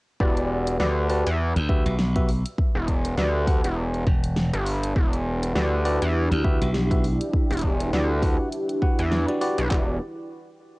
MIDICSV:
0, 0, Header, 1, 6, 480
1, 0, Start_track
1, 0, Key_signature, 1, "minor"
1, 0, Tempo, 594059
1, 166, Time_signature, 4, 2, 24, 8
1, 8720, End_track
2, 0, Start_track
2, 0, Title_t, "Tine electric piano"
2, 0, Program_c, 0, 4
2, 164, Note_on_c, 0, 71, 88
2, 165, Note_on_c, 0, 66, 101
2, 165, Note_on_c, 0, 67, 92
2, 165, Note_on_c, 0, 74, 114
2, 604, Note_off_c, 0, 66, 0
2, 604, Note_off_c, 0, 67, 0
2, 604, Note_off_c, 0, 71, 0
2, 604, Note_off_c, 0, 74, 0
2, 644, Note_on_c, 0, 74, 91
2, 645, Note_on_c, 0, 66, 80
2, 645, Note_on_c, 0, 67, 75
2, 645, Note_on_c, 0, 71, 79
2, 860, Note_off_c, 0, 66, 0
2, 860, Note_off_c, 0, 71, 0
2, 860, Note_off_c, 0, 74, 0
2, 861, Note_off_c, 0, 67, 0
2, 885, Note_on_c, 0, 66, 89
2, 885, Note_on_c, 0, 67, 85
2, 886, Note_on_c, 0, 71, 83
2, 886, Note_on_c, 0, 74, 96
2, 1025, Note_off_c, 0, 66, 0
2, 1026, Note_off_c, 0, 67, 0
2, 1026, Note_off_c, 0, 71, 0
2, 1026, Note_off_c, 0, 74, 0
2, 1366, Note_on_c, 0, 66, 93
2, 1366, Note_on_c, 0, 67, 87
2, 1366, Note_on_c, 0, 71, 90
2, 1367, Note_on_c, 0, 76, 108
2, 1570, Note_off_c, 0, 66, 0
2, 1570, Note_off_c, 0, 67, 0
2, 1570, Note_off_c, 0, 71, 0
2, 1570, Note_off_c, 0, 76, 0
2, 1743, Note_on_c, 0, 66, 90
2, 1743, Note_on_c, 0, 67, 82
2, 1743, Note_on_c, 0, 71, 86
2, 1743, Note_on_c, 0, 76, 103
2, 1850, Note_off_c, 0, 66, 0
2, 1850, Note_off_c, 0, 67, 0
2, 1850, Note_off_c, 0, 71, 0
2, 1850, Note_off_c, 0, 76, 0
2, 2567, Note_on_c, 0, 66, 77
2, 2567, Note_on_c, 0, 67, 68
2, 2567, Note_on_c, 0, 71, 66
2, 2567, Note_on_c, 0, 74, 79
2, 2781, Note_off_c, 0, 67, 0
2, 2782, Note_off_c, 0, 66, 0
2, 2782, Note_off_c, 0, 71, 0
2, 2782, Note_off_c, 0, 74, 0
2, 2806, Note_on_c, 0, 66, 75
2, 2806, Note_on_c, 0, 67, 73
2, 2806, Note_on_c, 0, 78, 86
2, 2807, Note_on_c, 0, 71, 70
2, 3010, Note_off_c, 0, 66, 0
2, 3010, Note_off_c, 0, 67, 0
2, 3010, Note_off_c, 0, 71, 0
2, 3010, Note_off_c, 0, 78, 0
2, 4486, Note_on_c, 0, 71, 77
2, 4487, Note_on_c, 0, 66, 86
2, 4487, Note_on_c, 0, 67, 81
2, 4487, Note_on_c, 0, 74, 93
2, 4701, Note_off_c, 0, 66, 0
2, 4701, Note_off_c, 0, 67, 0
2, 4701, Note_off_c, 0, 71, 0
2, 4702, Note_off_c, 0, 74, 0
2, 4727, Note_on_c, 0, 66, 92
2, 4728, Note_on_c, 0, 67, 85
2, 4728, Note_on_c, 0, 71, 86
2, 4728, Note_on_c, 0, 74, 102
2, 4866, Note_off_c, 0, 66, 0
2, 4867, Note_off_c, 0, 67, 0
2, 4867, Note_off_c, 0, 71, 0
2, 4867, Note_off_c, 0, 74, 0
2, 5206, Note_on_c, 0, 66, 100
2, 5206, Note_on_c, 0, 67, 93
2, 5206, Note_on_c, 0, 76, 109
2, 5207, Note_on_c, 0, 71, 91
2, 5409, Note_off_c, 0, 76, 0
2, 5410, Note_off_c, 0, 66, 0
2, 5410, Note_off_c, 0, 67, 0
2, 5410, Note_off_c, 0, 71, 0
2, 5584, Note_on_c, 0, 66, 88
2, 5584, Note_on_c, 0, 67, 80
2, 5584, Note_on_c, 0, 71, 79
2, 5584, Note_on_c, 0, 76, 95
2, 5691, Note_off_c, 0, 66, 0
2, 5691, Note_off_c, 0, 67, 0
2, 5691, Note_off_c, 0, 71, 0
2, 5691, Note_off_c, 0, 76, 0
2, 6407, Note_on_c, 0, 74, 81
2, 6408, Note_on_c, 0, 66, 78
2, 6408, Note_on_c, 0, 67, 69
2, 6408, Note_on_c, 0, 71, 72
2, 6622, Note_off_c, 0, 66, 0
2, 6622, Note_off_c, 0, 67, 0
2, 6622, Note_off_c, 0, 71, 0
2, 6622, Note_off_c, 0, 74, 0
2, 6647, Note_on_c, 0, 67, 76
2, 6647, Note_on_c, 0, 71, 73
2, 6647, Note_on_c, 0, 78, 88
2, 6648, Note_on_c, 0, 66, 80
2, 6850, Note_off_c, 0, 66, 0
2, 6850, Note_off_c, 0, 67, 0
2, 6850, Note_off_c, 0, 71, 0
2, 6850, Note_off_c, 0, 78, 0
2, 7125, Note_on_c, 0, 66, 82
2, 7125, Note_on_c, 0, 71, 77
2, 7126, Note_on_c, 0, 67, 75
2, 7126, Note_on_c, 0, 78, 95
2, 7265, Note_off_c, 0, 66, 0
2, 7265, Note_off_c, 0, 67, 0
2, 7265, Note_off_c, 0, 71, 0
2, 7266, Note_off_c, 0, 78, 0
2, 7502, Note_on_c, 0, 71, 72
2, 7502, Note_on_c, 0, 74, 84
2, 7503, Note_on_c, 0, 66, 79
2, 7503, Note_on_c, 0, 67, 72
2, 7590, Note_off_c, 0, 66, 0
2, 7590, Note_off_c, 0, 67, 0
2, 7590, Note_off_c, 0, 71, 0
2, 7590, Note_off_c, 0, 74, 0
2, 7605, Note_on_c, 0, 66, 90
2, 7605, Note_on_c, 0, 67, 85
2, 7605, Note_on_c, 0, 71, 81
2, 7605, Note_on_c, 0, 74, 98
2, 7745, Note_off_c, 0, 66, 0
2, 7745, Note_off_c, 0, 67, 0
2, 7745, Note_off_c, 0, 71, 0
2, 7745, Note_off_c, 0, 74, 0
2, 7845, Note_on_c, 0, 66, 89
2, 7845, Note_on_c, 0, 74, 92
2, 7846, Note_on_c, 0, 67, 77
2, 7846, Note_on_c, 0, 71, 81
2, 8030, Note_off_c, 0, 66, 0
2, 8030, Note_off_c, 0, 67, 0
2, 8030, Note_off_c, 0, 74, 0
2, 8031, Note_off_c, 0, 71, 0
2, 8720, End_track
3, 0, Start_track
3, 0, Title_t, "Analog synth pad"
3, 0, Program_c, 1, 89
3, 4003, Note_on_c, 1, 64, 72
3, 4004, Note_on_c, 1, 67, 93
3, 4005, Note_on_c, 1, 62, 86
3, 7812, Note_off_c, 1, 64, 0
3, 7813, Note_off_c, 1, 62, 0
3, 7813, Note_off_c, 1, 67, 0
3, 8720, End_track
4, 0, Start_track
4, 0, Title_t, "Analog synth bass"
4, 0, Program_c, 2, 38
4, 167, Note_on_c, 2, 28, 99
4, 630, Note_off_c, 2, 28, 0
4, 647, Note_on_c, 2, 38, 91
4, 1001, Note_off_c, 2, 38, 0
4, 1023, Note_on_c, 2, 40, 104
4, 1241, Note_off_c, 2, 40, 0
4, 2222, Note_on_c, 2, 28, 101
4, 2549, Note_off_c, 2, 28, 0
4, 2567, Note_on_c, 2, 38, 98
4, 2921, Note_off_c, 2, 38, 0
4, 2944, Note_on_c, 2, 28, 100
4, 3270, Note_off_c, 2, 28, 0
4, 3664, Note_on_c, 2, 31, 94
4, 3990, Note_off_c, 2, 31, 0
4, 4008, Note_on_c, 2, 28, 100
4, 4470, Note_off_c, 2, 28, 0
4, 4487, Note_on_c, 2, 38, 93
4, 4841, Note_off_c, 2, 38, 0
4, 4864, Note_on_c, 2, 40, 105
4, 5081, Note_off_c, 2, 40, 0
4, 6064, Note_on_c, 2, 28, 103
4, 6390, Note_off_c, 2, 28, 0
4, 6410, Note_on_c, 2, 38, 93
4, 6763, Note_off_c, 2, 38, 0
4, 7264, Note_on_c, 2, 40, 95
4, 7482, Note_off_c, 2, 40, 0
4, 7743, Note_on_c, 2, 35, 102
4, 7830, Note_off_c, 2, 35, 0
4, 7847, Note_on_c, 2, 28, 105
4, 8070, Note_off_c, 2, 28, 0
4, 8720, End_track
5, 0, Start_track
5, 0, Title_t, "Slap bass"
5, 0, Program_c, 3, 36
5, 1261, Note_on_c, 3, 38, 105
5, 1480, Note_off_c, 3, 38, 0
5, 1500, Note_on_c, 3, 35, 97
5, 1959, Note_off_c, 3, 35, 0
5, 3285, Note_on_c, 3, 28, 99
5, 3640, Note_off_c, 3, 28, 0
5, 5101, Note_on_c, 3, 38, 109
5, 5320, Note_off_c, 3, 38, 0
5, 5344, Note_on_c, 3, 35, 100
5, 5801, Note_off_c, 3, 35, 0
5, 8720, End_track
6, 0, Start_track
6, 0, Title_t, "Drums"
6, 165, Note_on_c, 9, 36, 123
6, 246, Note_off_c, 9, 36, 0
6, 300, Note_on_c, 9, 42, 52
6, 381, Note_off_c, 9, 42, 0
6, 543, Note_on_c, 9, 42, 74
6, 624, Note_off_c, 9, 42, 0
6, 645, Note_on_c, 9, 38, 114
6, 726, Note_off_c, 9, 38, 0
6, 886, Note_on_c, 9, 37, 59
6, 886, Note_on_c, 9, 46, 63
6, 966, Note_off_c, 9, 37, 0
6, 966, Note_off_c, 9, 46, 0
6, 1023, Note_on_c, 9, 42, 71
6, 1104, Note_off_c, 9, 42, 0
6, 1263, Note_on_c, 9, 42, 42
6, 1344, Note_off_c, 9, 42, 0
6, 1366, Note_on_c, 9, 36, 114
6, 1447, Note_off_c, 9, 36, 0
6, 1503, Note_on_c, 9, 42, 72
6, 1583, Note_off_c, 9, 42, 0
6, 1605, Note_on_c, 9, 38, 115
6, 1685, Note_off_c, 9, 38, 0
6, 1742, Note_on_c, 9, 37, 39
6, 1742, Note_on_c, 9, 42, 57
6, 1743, Note_on_c, 9, 36, 112
6, 1823, Note_off_c, 9, 37, 0
6, 1823, Note_off_c, 9, 42, 0
6, 1824, Note_off_c, 9, 36, 0
6, 1847, Note_on_c, 9, 46, 68
6, 1928, Note_off_c, 9, 46, 0
6, 1984, Note_on_c, 9, 42, 74
6, 2065, Note_off_c, 9, 42, 0
6, 2086, Note_on_c, 9, 36, 124
6, 2167, Note_off_c, 9, 36, 0
6, 2326, Note_on_c, 9, 36, 68
6, 2326, Note_on_c, 9, 42, 60
6, 2407, Note_off_c, 9, 36, 0
6, 2407, Note_off_c, 9, 42, 0
6, 2463, Note_on_c, 9, 37, 42
6, 2463, Note_on_c, 9, 42, 73
6, 2544, Note_off_c, 9, 37, 0
6, 2544, Note_off_c, 9, 42, 0
6, 2565, Note_on_c, 9, 38, 124
6, 2646, Note_off_c, 9, 38, 0
6, 2806, Note_on_c, 9, 36, 118
6, 2808, Note_on_c, 9, 46, 63
6, 2887, Note_off_c, 9, 36, 0
6, 2889, Note_off_c, 9, 46, 0
6, 2944, Note_on_c, 9, 42, 70
6, 3024, Note_off_c, 9, 42, 0
6, 3184, Note_on_c, 9, 42, 39
6, 3265, Note_off_c, 9, 42, 0
6, 3286, Note_on_c, 9, 36, 120
6, 3289, Note_on_c, 9, 37, 40
6, 3367, Note_off_c, 9, 36, 0
6, 3370, Note_off_c, 9, 37, 0
6, 3423, Note_on_c, 9, 42, 71
6, 3504, Note_off_c, 9, 42, 0
6, 3525, Note_on_c, 9, 38, 122
6, 3606, Note_off_c, 9, 38, 0
6, 3664, Note_on_c, 9, 42, 55
6, 3745, Note_off_c, 9, 42, 0
6, 3768, Note_on_c, 9, 46, 66
6, 3849, Note_off_c, 9, 46, 0
6, 3906, Note_on_c, 9, 42, 74
6, 3987, Note_off_c, 9, 42, 0
6, 4006, Note_on_c, 9, 36, 127
6, 4087, Note_off_c, 9, 36, 0
6, 4145, Note_on_c, 9, 42, 55
6, 4226, Note_off_c, 9, 42, 0
6, 4386, Note_on_c, 9, 37, 42
6, 4386, Note_on_c, 9, 42, 75
6, 4467, Note_off_c, 9, 37, 0
6, 4467, Note_off_c, 9, 42, 0
6, 4487, Note_on_c, 9, 38, 123
6, 4568, Note_off_c, 9, 38, 0
6, 4728, Note_on_c, 9, 37, 53
6, 4728, Note_on_c, 9, 46, 62
6, 4809, Note_off_c, 9, 37, 0
6, 4809, Note_off_c, 9, 46, 0
6, 4864, Note_on_c, 9, 42, 69
6, 4944, Note_off_c, 9, 42, 0
6, 5104, Note_on_c, 9, 42, 40
6, 5185, Note_off_c, 9, 42, 0
6, 5207, Note_on_c, 9, 36, 119
6, 5287, Note_off_c, 9, 36, 0
6, 5345, Note_on_c, 9, 42, 70
6, 5426, Note_off_c, 9, 42, 0
6, 5448, Note_on_c, 9, 38, 127
6, 5528, Note_off_c, 9, 38, 0
6, 5583, Note_on_c, 9, 36, 117
6, 5586, Note_on_c, 9, 37, 37
6, 5586, Note_on_c, 9, 42, 54
6, 5664, Note_off_c, 9, 36, 0
6, 5666, Note_off_c, 9, 37, 0
6, 5666, Note_off_c, 9, 42, 0
6, 5689, Note_on_c, 9, 46, 64
6, 5770, Note_off_c, 9, 46, 0
6, 5825, Note_on_c, 9, 42, 68
6, 5906, Note_off_c, 9, 42, 0
6, 5927, Note_on_c, 9, 36, 127
6, 6008, Note_off_c, 9, 36, 0
6, 6065, Note_on_c, 9, 42, 25
6, 6081, Note_off_c, 9, 42, 0
6, 6081, Note_on_c, 9, 42, 28
6, 6088, Note_off_c, 9, 42, 0
6, 6088, Note_on_c, 9, 42, 33
6, 6118, Note_off_c, 9, 42, 0
6, 6118, Note_on_c, 9, 42, 38
6, 6134, Note_off_c, 9, 42, 0
6, 6134, Note_on_c, 9, 42, 40
6, 6152, Note_off_c, 9, 42, 0
6, 6152, Note_on_c, 9, 42, 47
6, 6167, Note_on_c, 9, 36, 66
6, 6233, Note_off_c, 9, 42, 0
6, 6248, Note_off_c, 9, 36, 0
6, 6306, Note_on_c, 9, 37, 40
6, 6306, Note_on_c, 9, 42, 68
6, 6387, Note_off_c, 9, 37, 0
6, 6387, Note_off_c, 9, 42, 0
6, 6409, Note_on_c, 9, 38, 120
6, 6490, Note_off_c, 9, 38, 0
6, 6646, Note_on_c, 9, 36, 123
6, 6649, Note_on_c, 9, 46, 66
6, 6727, Note_off_c, 9, 36, 0
6, 6730, Note_off_c, 9, 46, 0
6, 6888, Note_on_c, 9, 42, 70
6, 6969, Note_off_c, 9, 42, 0
6, 7024, Note_on_c, 9, 42, 39
6, 7105, Note_off_c, 9, 42, 0
6, 7127, Note_on_c, 9, 36, 115
6, 7128, Note_on_c, 9, 37, 39
6, 7208, Note_off_c, 9, 36, 0
6, 7208, Note_off_c, 9, 37, 0
6, 7263, Note_on_c, 9, 42, 65
6, 7344, Note_off_c, 9, 42, 0
6, 7367, Note_on_c, 9, 38, 126
6, 7447, Note_off_c, 9, 38, 0
6, 7503, Note_on_c, 9, 42, 56
6, 7584, Note_off_c, 9, 42, 0
6, 7608, Note_on_c, 9, 46, 67
6, 7688, Note_off_c, 9, 46, 0
6, 7743, Note_on_c, 9, 42, 68
6, 7824, Note_off_c, 9, 42, 0
6, 7846, Note_on_c, 9, 36, 115
6, 7847, Note_on_c, 9, 39, 97
6, 7927, Note_off_c, 9, 36, 0
6, 7928, Note_off_c, 9, 39, 0
6, 8720, End_track
0, 0, End_of_file